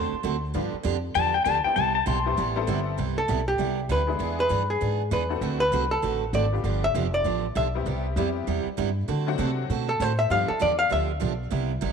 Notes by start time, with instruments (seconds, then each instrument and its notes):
Already playing: upright bass E2, steel-string acoustic guitar D3 A3 C4 F#4 A4, pedal steel guitar C6
0.13 muted upright bass stroke
0.23 upright bass D2, steel-string acoustic guitar D3 A3 C4 F#4 A4
0.54 upright bass G2, steel-string acoustic guitar D3 F3 B3 D4 G4, honky-tonk piano G3 B3 D4 F4 G4
0.73 muted upright bass stroke
0.83 upright bass F2, steel-string acoustic guitar D3 F3 B3 D4 G4
1.15 upright bass E2, steel-string acoustic guitar D3 F3 B3 D4 G4, pedal steel guitar A5
1.34 pedal steel guitar G5
1.45 upright bass D2, steel-string acoustic guitar D3 F3 B3 D4 G4, pedal steel guitar A5
1.64 honky-tonk piano G3 B3 C4 E4 G4, pedal steel guitar G5, muted upright bass stroke
1.76 upright bass C2, steel-string acoustic guitar C3 G3 B3 E4 G4, pedal steel guitar A5
1.95 pedal steel guitar A5
2.06 upright bass B1, steel-string acoustic guitar C3 G3 B3 E4 G4, pedal steel guitar C6
2.26 honky-tonk piano G3 B3 C4 E4 G4
2.37 upright bass A1, steel-string acoustic guitar C3 G3 B3 E4 G4
2.56 honky-tonk piano G3 B3 C4 E4 A4
2.67 upright bass G1, steel-string acoustic guitar C3 G3 B3 E4 G4
2.98 upright bass C2, steel-string acoustic guitar C3 G3 B3 E4 G4
3.18 hollow-body jazz guitar A4
3.28 upright bass B1, steel-string acoustic guitar C3 G3 B3 E4 G4
3.48 hollow-body jazz guitar G4
3.58 upright bass C2, steel-string acoustic guitar C3 G3 B3 E4 G4
3.89 upright bass D2, steel-string acoustic guitar C3 G3 B3 E4 G4, hollow-body jazz guitar B4
4.07 honky-tonk piano G#3 B3 D4 E4 G#4
4.19 upright bass E2, steel-string acoustic guitar E3 B3 D4 G#4
4.40 hollow-body jazz guitar B4
4.49 upright bass G2, steel-string acoustic guitar E3 B3 D4 G#4
4.70 hollow-body jazz guitar G#4
4.81 upright bass G#2, steel-string acoustic guitar E3 B3 D4 G#4
5.11 upright bass E2, steel-string acoustic guitar E3 B3 D4 G#4, hollow-body jazz guitar B4
5.29 honky-tonk piano A3 C4 D4 F#4 A4
5.41 upright bass D2, steel-string acoustic guitar D3 A3 C4 F#4 A4
5.60 hollow-body jazz guitar B4
5.72 upright bass C2, steel-string acoustic guitar D3 A3 C4 F#4 A4
5.91 hollow-body jazz guitar A4
6.02 upright bass A1, steel-string acoustic guitar D3 A3 C4 F#4 A4
6.33 upright bass G#1, steel-string acoustic guitar D3 A3 C4 F#4 A4, hollow-body jazz guitar D5
6.52 honky-tonk piano G3 B3 D4 F4 G4
6.64 upright bass G1, steel-string acoustic guitar D3 F3 B3 D4 G4
6.84 hollow-body jazz guitar E5
6.94 upright bass F1, steel-string acoustic guitar D3 F3 B3 D4 G4
7.14 hollow-body jazz guitar D5
7.24 upright bass A1, steel-string acoustic guitar D3 F3 B3 D4 G4
7.55 upright bass B1, steel-string acoustic guitar D3 F3 B3 D4 G4, hollow-body jazz guitar E5
7.75 honky-tonk piano G3 B3 C4 E4 G4
7.86 upright bass C2, steel-string acoustic guitar C3 G3 B3 E4 G4
8.16 upright bass F2, steel-string acoustic guitar C3 G3 B3 E4 G4, honky-tonk piano G3 B3 C4 E4 G4
8.47 upright bass E2, steel-string acoustic guitar C3 G3 B3 E4 G4
8.66 muted upright bass stroke
8.77 upright bass G2, steel-string acoustic guitar C3 G3 B3 E4 G4
9.08 steel-string acoustic guitar D3 A3 C4 F#4 A4, upright bass D3
9.27 honky-tonk piano F#3 A3 C4 D4 F#4
9.38 upright bass C3, steel-string acoustic guitar D3 A3 C4 F#4 A4
9.70 upright bass B2, steel-string acoustic guitar D3 A3 C4 F#4 A4
9.89 hollow-body jazz guitar A4
10.00 upright bass A2, steel-string acoustic guitar D3 A3 C4 F#4 A4, hollow-body jazz guitar C5
10.19 hollow-body jazz guitar E5
10.30 upright bass G2, steel-string acoustic guitar D3 F3 B3 D4 G4, honky-tonk piano G3 B3 D4 F4 G4, hollow-body jazz guitar F5
10.48 hollow-body jazz guitar A4, muted upright bass stroke
10.60 upright bass E2, steel-string acoustic guitar D3 F3 B3 D4 G4, hollow-body jazz guitar D5
10.79 hollow-body jazz guitar F5
10.90 upright bass D2, steel-string acoustic guitar D3 F3 B3 D4 G4, hollow-body jazz guitar E5
11.20 upright bass B1, steel-string acoustic guitar D3 F3 B3 D4 G4
11.51 upright bass C2, steel-string acoustic guitar C3 G3 B3 E4 G4
11.81 upright bass A1, steel-string acoustic guitar C3 G3 B3 E4 G4